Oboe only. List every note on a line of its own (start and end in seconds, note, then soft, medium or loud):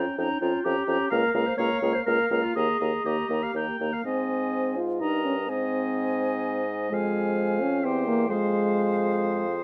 0.00 0.19 G5 soft
0.19 0.41 G5 soft
0.42 0.64 G5 soft
0.65 0.88 G5 soft
0.89 1.10 G5 soft
1.10 1.34 F5 soft
1.35 1.57 F5 soft
1.58 1.82 F5 medium
1.83 2.05 F5 soft
2.06 2.30 F5 soft
2.31 2.55 F5 soft
2.56 2.79 D#5 soft
2.80 3.04 D#5 soft
3.04 3.44 D#5 soft
3.43 3.55 F5 soft
3.56 3.95 G5 soft
3.93 4.05 F5 soft
4.06 4.84 D#5 soft
5.00 5.48 D#5 soft
5.50 6.95 D#5 soft
6.93 7.86 F5 soft
7.84 8.29 C5 soft
8.30 9.64 C5 soft